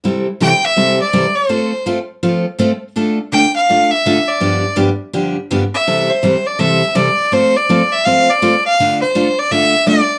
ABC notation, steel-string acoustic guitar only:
X:1
M:4/4
L:1/16
Q:"Swing" 1/4=164
K:C
V:1 name="Steel-string acoustic guitar"
[C,E,G,CEA]2 z2 [C,E,G,CEA] z3 [C,E,G,CEA]2 z2 [C,E,G,CEA] z3 | [F,A,CFA]2 z2 [F,A,CFA] z3 [F,A,CFA]2 z2 [F,A,CFA] z3 | [D,A,DFA]2 z2 [D,A,DFA] z3 [D,A,DFA]2 z2 [D,A,DFA] z3 | [G,,D,F,B,DG]2 z2 [G,,D,F,B,DG] z3 [G,,D,F,B,DG]2 z2 [G,,D,F,B,DG] z3 |
[C,E,G,CEA]2 z2 [C,E,G,CEA] z3 [C,E,G,CEA]2 z2 [C,E,G,CEA] z3 | [F,A,CFA]2 z2 [F,A,CFA] z3 [F,A,CFA]2 z2 [F,A,CFA] z3 | [D,A,DFA]2 z2 [D,A,DFA] z3 [D,A,DFA]2 z2 [D,A,DFA] z3 |]